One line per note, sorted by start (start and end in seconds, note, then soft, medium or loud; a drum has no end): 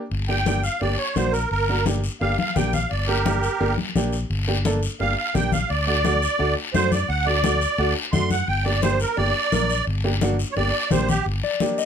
0.11 0.67 G1 loud
0.11 long guiro medium
0.29 0.35 A#3 medium
0.29 0.35 D4 medium
0.29 0.35 G4 medium
0.29 0.63 G5 medium
0.29 high conga soft
0.46 0.58 A#3 medium
0.46 0.59 D4 medium
0.46 0.59 G4 medium
0.46 high conga medium
0.46 short guiro medium
0.63 0.81 F5 medium
0.63 short guiro medium
0.81 0.95 G1 medium
0.81 0.93 A#3 medium
0.81 0.94 D4 medium
0.81 0.94 G4 medium
0.81 0.98 D5 medium
0.81 high conga soft
0.81 long guiro medium
0.98 1.15 C#5 medium
1.16 1.44 A#1 medium
1.16 1.34 A#3 medium
1.16 1.35 D4 medium
1.16 1.35 F#4 medium
1.16 1.33 C5 medium
1.16 high conga medium
1.16 short guiro medium
1.32 1.49 A#4 medium
1.32 short guiro medium
1.51 2.07 G1 medium
1.51 1.85 A#4 loud
1.51 long guiro medium
1.68 1.75 A#3 medium
1.68 1.75 D4 medium
1.68 1.75 F#4 medium
1.68 high conga soft
1.86 1.98 A#3 medium
1.86 1.99 D4 medium
1.86 1.99 G4 medium
1.86 high conga medium
1.86 short guiro medium
2.04 short guiro medium
2.21 2.35 G1 medium
2.21 2.33 A#3 medium
2.21 2.33 D4 medium
2.21 2.34 G4 medium
2.21 2.37 F5 medium
2.21 high conga soft
2.21 long guiro medium
2.39 2.55 F5 medium
2.39 high conga medium
2.56 2.84 A#1 medium
2.56 2.74 A#3 medium
2.56 2.74 D4 medium
2.56 2.75 G4 medium
2.56 2.73 G5 medium
2.56 high conga medium
2.56 low conga medium
2.56 short guiro medium
2.73 2.90 F5 medium
2.73 low conga medium
2.73 short guiro medium
2.90 3.47 G1 medium
2.90 3.08 D5 medium
2.90 long guiro medium
3.07 3.14 A#3 medium
3.07 3.15 D4 medium
3.07 3.73 G4 medium
3.07 3.15 G4 medium
3.07 3.76 A#4 medium
3.07 high conga soft
3.26 3.38 A#3 medium
3.26 3.38 D4 medium
3.26 3.38 G4 medium
3.26 high conga medium
3.26 short guiro medium
3.43 short guiro medium
3.60 3.75 G1 medium
3.60 3.73 A#3 medium
3.60 3.73 D4 medium
3.60 3.73 G4 medium
3.60 high conga soft
3.60 long guiro medium
3.78 high conga medium
3.95 4.23 A#1 medium
3.95 4.14 A#3 medium
3.95 4.14 D4 medium
3.95 4.14 G4 medium
3.95 high conga medium
3.95 short guiro medium
4.13 short guiro medium
4.30 4.86 G1 medium
4.30 long guiro medium
4.48 4.54 A#3 medium
4.48 4.54 D4 medium
4.48 4.54 G4 medium
4.48 high conga soft
4.65 4.77 A#3 medium
4.65 4.78 D4 medium
4.65 4.78 A4 medium
4.65 high conga medium
4.65 short guiro medium
4.83 short guiro medium
5.00 5.14 G1 medium
5.00 5.12 A#3 medium
5.00 5.12 D4 medium
5.00 5.13 G4 medium
5.00 5.16 F5 medium
5.00 high conga soft
5.00 long guiro medium
5.18 5.34 F5 medium
5.34 5.63 A#1 medium
5.34 5.53 A#3 medium
5.34 5.53 D4 medium
5.34 5.53 G4 medium
5.34 5.52 G5 medium
5.34 high conga medium
5.34 low conga medium
5.34 short guiro medium
5.52 5.69 F5 medium
5.52 high conga medium
5.52 low conga medium
5.52 short guiro medium
5.69 6.26 D2 medium
5.69 5.85 D5 medium
5.69 long guiro medium
5.87 5.93 A3 medium
5.87 5.93 D4 medium
5.87 5.94 F#4 medium
5.87 6.54 D5 loud
5.87 high conga soft
6.04 6.17 A3 medium
6.04 6.17 D4 medium
6.04 6.17 F#4 medium
6.04 high conga medium
6.04 short guiro medium
6.22 short guiro medium
6.39 6.54 D2 medium
6.39 6.51 A3 medium
6.39 6.52 D4 medium
6.39 6.52 F#4 medium
6.39 high conga soft
6.39 long guiro medium
6.74 7.02 F#2 medium
6.74 6.92 A3 medium
6.74 6.92 D4 medium
6.74 6.93 F#4 medium
6.74 6.91 C5 loud
6.74 high conga medium
6.74 short guiro medium
6.92 7.09 D5 medium
6.92 high conga medium
6.92 short guiro medium
7.09 7.65 D2 medium
7.09 7.26 F#5 medium
7.09 long guiro medium
7.26 7.32 A3 medium
7.26 7.32 D4 medium
7.26 7.33 F#4 medium
7.26 7.94 D5 loud
7.26 high conga soft
7.44 7.56 A3 medium
7.44 7.56 D4 medium
7.44 7.56 F#4 medium
7.44 high conga medium
7.44 short guiro medium
7.61 short guiro medium
7.78 7.92 D2 loud
7.78 7.91 A3 medium
7.78 7.91 D4 medium
7.78 7.91 F#4 loud
7.78 high conga soft
7.78 long guiro medium
8.12 8.41 F#2 medium
8.12 8.31 A3 medium
8.12 8.31 D4 medium
8.12 8.32 F#4 medium
8.12 8.30 C6 loud
8.12 high conga medium
8.12 low conga medium
8.12 short guiro medium
8.30 8.48 F#5 medium
8.30 high conga medium
8.30 short guiro medium
8.48 9.04 G1 loud
8.48 8.65 G5 loud
8.48 long guiro medium
8.65 8.72 A#3 medium
8.65 8.72 D4 medium
8.65 8.72 G4 medium
8.65 8.82 D5 medium
8.65 high conga soft
8.82 8.95 A#3 medium
8.82 8.95 D4 medium
8.82 8.95 G4 medium
8.82 9.00 C5 loud
8.82 high conga medium
8.82 short guiro medium
9.00 9.17 A#4 loud
9.00 short guiro medium
9.17 9.32 G1 medium
9.17 9.30 A#3 medium
9.17 9.30 D4 medium
9.17 9.30 G4 medium
9.17 9.85 D5 loud
9.17 high conga soft
9.17 long guiro medium
9.52 9.80 A#1 medium
9.52 9.70 A#3 medium
9.52 9.71 D4 medium
9.52 9.71 A#4 medium
9.52 high conga medium
9.52 short guiro medium
9.70 short guiro medium
9.87 10.43 G1 loud
9.87 long guiro medium
10.04 10.10 A#3 medium
10.04 10.11 D4 medium
10.04 10.11 G4 medium
10.04 high conga soft
10.21 10.34 A#3 medium
10.21 10.34 D4 medium
10.21 10.34 F#4 medium
10.21 high conga loud
10.21 short guiro medium
10.39 short guiro medium
10.52 10.54 C#5 medium
10.56 10.70 G1 loud
10.56 10.69 A#3 medium
10.56 10.69 D4 medium
10.56 10.69 G4 medium
10.56 10.90 D5 loud
10.56 high conga soft
10.56 long guiro medium
10.91 11.19 A#1 loud
10.91 11.09 A#3 medium
10.91 11.10 D4 medium
10.91 11.10 G4 medium
10.91 11.09 C5 medium
10.91 high conga medium
10.91 low conga medium
10.91 short guiro medium
11.09 11.26 G4 loud
11.09 low conga medium
11.09 short guiro medium
11.26 11.40 G1 medium
11.26 long guiro medium
11.43 11.79 D5 medium
11.43 high conga soft
11.60 11.79 A#3 medium
11.60 11.79 D4 medium
11.60 11.80 G4 medium
11.60 high conga medium
11.60 short guiro medium
11.78 11.85 D#5 medium
11.78 short guiro medium